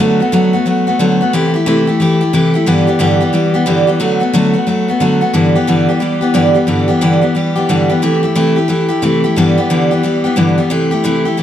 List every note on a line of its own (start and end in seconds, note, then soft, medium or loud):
0.00 0.20 D3 medium
0.00 0.20 F#3 medium
0.00 0.21 A3 medium
0.00 0.20 B3 medium
0.00 0.19 F#4 medium
0.20 0.32 A3 medium
0.20 0.32 B3 medium
0.20 0.32 F#4 medium
0.32 0.54 D3 medium
0.32 0.54 F#3 medium
0.32 0.54 A3 medium
0.32 0.53 B3 loud
0.32 0.52 F#4 medium
0.53 0.65 A3 soft
0.53 0.66 B3 medium
0.53 0.66 F#4 medium
0.66 0.87 F#3 medium
0.66 0.87 A3 medium
0.66 0.87 B3 medium
0.66 0.86 F#4 medium
0.87 0.99 A3 medium
0.87 0.99 B3 medium
0.87 1.00 F#4 medium
0.99 1.21 D3 medium
0.99 1.21 F#3 medium
0.99 1.21 A3 medium
0.99 1.21 B3 medium
0.99 1.20 F#4 medium
1.21 1.33 A3 soft
1.21 1.34 B3 medium
1.21 1.33 F#4 medium
1.33 1.54 C3 loud
1.33 1.55 E3 medium
1.33 1.55 A3 medium
1.33 1.54 E4 medium
1.33 1.52 G4 loud
1.54 1.66 A3 soft
1.54 1.66 E4 soft
1.54 1.66 G4 medium
1.66 1.88 C3 medium
1.66 1.88 E3 medium
1.66 1.88 A3 loud
1.66 1.87 E4 medium
1.66 1.86 G4 loud
1.87 2.00 A3 soft
1.87 2.00 E4 medium
1.87 2.00 G4 medium
2.00 2.21 E3 medium
2.00 2.22 A3 medium
2.00 2.21 E4 medium
2.00 2.20 G4 medium
2.21 2.32 A3 soft
2.21 2.33 E4 medium
2.21 2.33 G4 medium
2.33 2.55 C3 medium
2.33 2.55 E3 medium
2.33 2.55 A3 medium
2.33 2.54 E4 medium
2.33 2.52 G4 loud
2.54 2.67 A3 medium
2.54 2.67 E4 medium
2.54 2.67 G4 medium
2.66 2.88 G2 medium
2.66 2.88 D3 medium
2.66 2.88 E3 medium
2.66 2.87 G3 medium
2.66 2.87 B3 loud
2.66 2.86 G4 medium
2.87 2.98 E3 medium
2.87 2.99 G3 medium
2.87 2.99 B3 medium
2.87 2.99 G4 medium
2.99 3.21 G2 medium
2.99 3.21 D3 medium
2.99 3.21 E3 medium
2.99 3.21 G3 loud
2.99 3.20 B3 loud
2.99 3.19 G4 loud
3.20 3.32 E3 soft
3.20 3.32 G3 medium
3.20 3.33 B3 medium
3.20 3.33 G4 medium
3.33 3.55 E3 medium
3.33 3.54 G3 medium
3.33 3.53 B3 medium
3.33 3.53 G4 medium
3.54 3.65 E3 medium
3.54 3.66 G3 medium
3.54 3.66 B3 medium
3.54 3.66 G4 medium
3.66 3.88 G2 medium
3.66 3.88 D3 medium
3.66 3.88 E3 medium
3.66 3.88 G3 medium
3.66 3.87 B3 loud
3.66 3.86 G4 medium
3.87 4.00 E3 medium
3.87 4.00 G3 medium
3.87 4.00 B3 medium
3.87 4.00 G4 medium
4.00 4.21 D3 medium
4.00 4.22 F#3 loud
4.00 4.22 A3 loud
4.00 4.20 B3 medium
4.00 4.19 F#4 medium
4.20 4.33 A3 medium
4.20 4.33 B3 medium
4.20 4.33 F#4 medium
4.33 4.55 D3 medium
4.33 4.55 F#3 medium
4.33 4.55 A3 loud
4.33 4.53 B3 loud
4.33 4.52 F#4 loud
4.54 4.66 A3 soft
4.54 4.67 B3 medium
4.54 4.67 F#4 medium
4.67 4.88 F#3 medium
4.67 4.89 A3 medium
4.67 4.88 B3 medium
4.67 4.87 F#4 medium
4.88 5.00 A3 medium
4.88 5.00 B3 medium
4.88 5.01 F#4 medium
5.00 5.22 D3 medium
5.00 5.22 F#3 medium
5.00 5.22 A3 medium
5.00 5.21 B3 medium
5.00 5.20 F#4 medium
5.21 5.34 A3 medium
5.21 5.33 B3 medium
5.21 5.34 F#4 medium
5.34 5.55 G2 medium
5.34 5.55 D3 medium
5.34 5.55 E3 medium
5.34 5.56 G3 medium
5.34 5.55 B3 medium
5.34 5.54 G4 medium
5.55 5.67 E3 soft
5.55 5.67 G3 medium
5.55 5.67 B3 medium
5.55 5.68 G4 medium
5.67 5.89 G2 medium
5.67 5.89 D3 medium
5.67 5.89 E3 medium
5.67 5.89 G3 medium
5.67 5.89 B3 medium
5.67 5.87 G4 medium
5.89 5.99 E3 soft
5.89 6.00 G3 soft
5.89 6.01 B3 medium
5.89 6.01 G4 medium
6.00 6.22 E3 medium
6.00 6.21 G3 medium
6.00 6.21 B3 medium
6.00 6.20 G4 medium
6.21 6.33 E3 medium
6.21 6.34 G3 soft
6.21 6.34 B3 medium
6.21 6.34 G4 medium
6.34 6.56 G2 medium
6.34 6.56 D3 medium
6.34 6.55 E3 medium
6.34 6.55 G3 medium
6.34 6.54 B3 medium
6.34 6.53 G4 medium
6.55 6.67 E3 medium
6.55 6.67 G3 medium
6.55 6.67 B3 medium
6.55 6.67 G4 medium
6.67 6.89 G2 medium
6.67 6.89 D3 medium
6.67 6.89 E3 medium
6.67 6.88 G3 medium
6.67 6.87 B3 medium
6.67 6.87 G4 loud
6.88 7.01 E3 medium
6.88 7.01 G3 medium
6.88 7.01 B3 medium
6.88 7.01 G4 medium
7.01 7.23 G2 medium
7.01 7.23 D3 medium
7.01 7.22 E3 loud
7.01 7.22 G3 medium
7.01 7.21 B3 loud
7.01 7.20 G4 medium
7.21 7.33 E3 soft
7.21 7.34 G3 soft
7.21 7.35 B3 medium
7.21 7.35 G4 medium
7.35 7.56 E3 medium
7.35 7.56 G3 medium
7.35 7.55 B3 medium
7.35 7.54 G4 medium
7.55 7.68 E3 soft
7.55 7.69 G3 medium
7.55 7.69 B3 medium
7.55 7.68 G4 medium
7.69 7.90 G2 medium
7.69 7.90 D3 medium
7.69 7.90 E3 medium
7.69 7.90 G3 medium
7.69 7.89 B3 medium
7.69 7.88 G4 medium
7.89 8.01 E3 soft
7.89 8.02 G3 medium
7.89 8.02 B3 medium
7.89 8.02 G4 medium
8.02 8.23 C3 medium
8.02 8.24 E3 medium
8.02 8.24 A3 medium
8.02 8.23 E4 medium
8.02 8.22 G4 loud
8.23 8.35 A3 soft
8.23 8.35 E4 medium
8.23 8.36 G4 medium
8.35 8.57 C3 medium
8.35 8.57 E3 medium
8.35 8.57 A3 medium
8.35 8.56 E4 medium
8.35 8.55 G4 medium
8.56 8.68 A3 soft
8.56 8.68 E4 medium
8.56 8.69 G4 medium
8.68 8.90 E3 medium
8.68 8.90 A3 medium
8.68 8.89 E4 medium
8.68 8.87 G4 medium
8.89 9.02 A3 soft
8.89 9.02 E4 medium
8.89 9.02 G4 medium
9.02 9.24 C3 medium
9.02 9.24 E3 medium
9.02 9.24 A3 medium
9.02 9.23 E4 medium
9.02 9.23 G4 medium
9.24 9.37 A3 soft
9.24 9.37 E4 medium
9.24 9.36 G4 medium
9.36 9.57 G2 medium
9.36 9.58 D3 medium
9.36 9.58 E3 medium
9.36 9.58 G3 loud
9.36 9.57 B3 medium
9.36 9.56 G4 loud
9.58 9.69 E3 soft
9.58 9.70 G3 medium
9.58 9.70 B3 medium
9.58 9.70 G4 medium
9.70 9.91 G2 medium
9.70 9.91 D3 medium
9.70 9.91 E3 medium
9.70 9.91 G3 medium
9.70 9.91 B3 loud
9.70 9.90 G4 loud
9.91 10.02 E3 medium
9.91 10.03 G3 soft
9.91 10.03 B3 medium
9.91 10.03 G4 medium
10.03 10.25 E3 medium
10.03 10.25 G3 medium
10.03 10.24 B3 medium
10.03 10.23 G4 medium
10.24 10.36 E3 medium
10.24 10.36 G3 soft
10.24 10.37 B3 medium
10.24 10.37 G4 medium
10.36 10.58 G2 medium
10.36 10.58 D3 medium
10.36 10.58 E3 medium
10.36 10.58 G3 medium
10.36 10.57 B3 medium
10.36 10.57 G4 medium
10.58 10.69 E3 medium
10.58 10.70 G3 medium
10.58 10.71 B3 medium
10.58 10.70 G4 medium
10.70 10.91 C3 medium
10.70 10.91 E3 medium
10.70 10.92 A3 medium
10.70 10.91 E4 medium
10.70 10.90 G4 loud
10.91 11.04 A3 soft
10.91 11.04 E4 medium
10.91 11.04 G4 medium
11.04 11.25 C3 medium
11.04 11.25 E3 medium
11.04 11.25 A3 medium
11.04 11.25 E4 loud
11.04 11.24 G4 medium
11.25 11.37 A3 soft
11.25 11.37 E4 medium
11.25 11.38 G4 medium
11.37 11.43 E3 medium
11.37 11.43 A3 medium
11.37 11.43 E4 medium
11.37 11.43 G4 medium